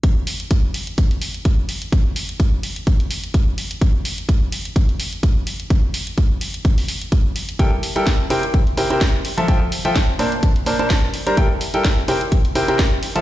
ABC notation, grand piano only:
X:1
M:4/4
L:1/16
Q:"Swing 16ths" 1/4=127
K:Cmix
V:1 name="Grand piano"
z16 | z16 | z16 | z16 |
[G,EABg] z2 [G,EABg] z2 [C,EBcg] z3 [C,EBcg] [C,EBcg] z3 [F,FAea] | [F,FAeg] z2 [F,FAeg] z2 [B,,DBca] z3 [B,,DBca] [B,,DBca] z3 [G,DBcb] | [G,EABg] z2 [G,EABg] z2 [C,EBcg] z3 [C,EBcg] [C,EBcg] z3 [F,FAea] |]